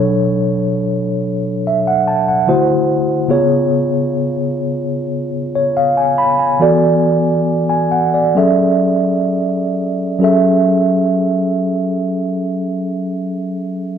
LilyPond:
\new Staff \with { instrumentName = "Tine electric piano" } { \time 4/4 \key fis \minor \tempo 4 = 70 << { r2 e''16 fis''16 a''16 fis''8 r8. | r2 r8. cis''16 eis''16 gis''16 b''16 gis''16~ | gis''16 r4 gis''16 fis''16 d''8 r4. r16 | r1 | } \\ { <b, fis d' a' cis''>2. <d a e' fis' c''>4 | <cis b eis' gis' cis''>1 | <e b fis' a' d''>2 <fis cis' gis' a' e''>2 | <fis cis' gis' a' e''>1 | } >> }